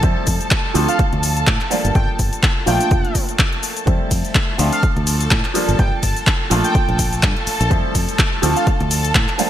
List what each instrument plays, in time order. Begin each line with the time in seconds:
Already playing: violin section A4 A5
0.02 fingered electric bass F2, grand piano F3 G3 A3 C4 E4, kick, closed hi-hat, cabasa
0.27 fingered electric bass F2, kick, open hi-hat, cabasa
0.41 closed hi-hat, cabasa
0.51 kick, clap, closed hi-hat, cabasa
0.74 fingered electric bass D2, grand piano F3 A3 C4 D4 F4, open hi-hat, cabasa
0.88 analog polysynth F5, closed hi-hat, cabasa
0.99 muted fingered electric bass stroke, kick, closed hi-hat, cabasa
1.13 fingered electric bass D2, closed hi-hat
1.23 open hi-hat, cabasa
1.37 closed hi-hat, cabasa
1.47 fingered electric bass A2, kick, clap, closed hi-hat, cabasa
1.61 clap, closed hi-hat
1.70 grand piano F3 G3 A#3 D4 F4, open hi-hat, cabasa
1.85 fingered electric bass G1, closed hi-hat, cabasa
1.95 fingered electric bass G1, analog polysynth G5, kick, closed hi-hat, cabasa
2.19 fingered electric bass G1, kick, open hi-hat, cabasa
2.33 closed hi-hat, cabasa
2.43 kick, clap, closed hi-hat, cabasa
2.66 fingered electric bass A#1, grand piano F3 A3 A#3 D4 F4, analog polysynth G5, open hi-hat, cabasa
2.81 closed hi-hat, cabasa
2.91 fingered electric bass F1, kick, closed hi-hat, cabasa
3.05 closed hi-hat
3.15 kick, open hi-hat, cabasa
3.29 closed hi-hat, cabasa
3.39 kick, clap, closed hi-hat, cabasa
3.53 closed hi-hat
3.63 open hi-hat, cabasa
3.77 closed hi-hat, cabasa
3.86 fingered electric bass F2, grand piano F3 G3 A3 C4 E4, violin section A4 A5, kick, closed hi-hat, cabasa
4.11 fingered electric bass F2, kick, open hi-hat, ride, cabasa
4.25 closed hi-hat, cabasa
4.35 kick, clap, closed hi-hat, cabasa
4.58 fingered electric bass D2, grand piano F3 A3 C4 D4 F4, open hi-hat, ride, cabasa
4.73 analog polysynth F5, closed hi-hat, cabasa
4.83 muted fingered electric bass stroke, kick, closed hi-hat, cabasa
4.96 fingered electric bass D2, closed hi-hat
5.07 open hi-hat, ride, cabasa
5.21 closed hi-hat, cabasa
5.31 fingered electric bass A2, kick, clap, closed hi-hat, cabasa
5.45 clap, closed hi-hat
5.54 grand piano F3 G3 A#3 D4 F4, open hi-hat, ride, cabasa
5.69 fingered electric bass G1, closed hi-hat, cabasa
5.79 fingered electric bass G1, analog polysynth G5, kick, closed hi-hat, cabasa
6.03 fingered electric bass G1, analog polysynth A5, kick, open hi-hat, ride, cabasa
6.17 closed hi-hat, cabasa
6.27 kick, clap, closed hi-hat, cabasa
6.50 fingered electric bass A#1, grand piano F3 A3 A#3 D4 F4, open hi-hat, ride, cabasa
6.64 analog polysynth G5, closed hi-hat, cabasa
6.75 kick, closed hi-hat, cabasa
6.89 fingered electric bass A#1, closed hi-hat
6.99 kick, open hi-hat, ride, cabasa
7.13 closed hi-hat, cabasa
7.23 fingered electric bass G2, kick, clap, closed hi-hat, cabasa
7.37 closed hi-hat
7.47 muted fingered electric bass stroke, open hi-hat, ride, cabasa
7.61 fingered electric bass A#1, closed hi-hat, cabasa
7.70 grand piano F3 G3 A3 C4 E4, kick, closed hi-hat, cabasa
7.95 fingered electric bass F2, kick, open hi-hat, ride, cabasa
8.09 closed hi-hat, cabasa
8.19 kick, clap, closed hi-hat, cabasa
8.42 fingered electric bass D2, grand piano F3 A3 C4 D4 F4, open hi-hat, ride, cabasa
8.56 analog polysynth F5, closed hi-hat, cabasa
8.67 muted fingered electric bass stroke, kick, closed hi-hat, cabasa
8.80 fingered electric bass D2, closed hi-hat
8.91 open hi-hat, ride, cabasa
9.05 closed hi-hat, cabasa
9.15 fingered electric bass A2, kick, clap, closed hi-hat, cabasa
9.29 clap, closed hi-hat
9.38 grand piano F3 G3 A#3 D4 F4, open hi-hat, ride, cabasa